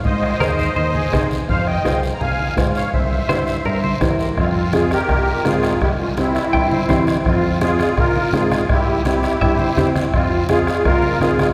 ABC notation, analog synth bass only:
X:1
M:4/4
L:1/8
Q:1/4=167
K:Cphr
V:1 name="Analog synth bass" clef=bass
A,,2 E,,2 E,,2 C,2 | F,,2 C,,2 C,,2 A,,2 | C,,2 G,,2 G,,2 =E,,2 | [K:Fm] F,,4 C,,2 A,,2 |
C,,4 G,,2 =E,,2 | F,,4 C,,2 A,,2 | C,,4 G,,2 =E,,2 | F,,4 C,,2 A,,2 |]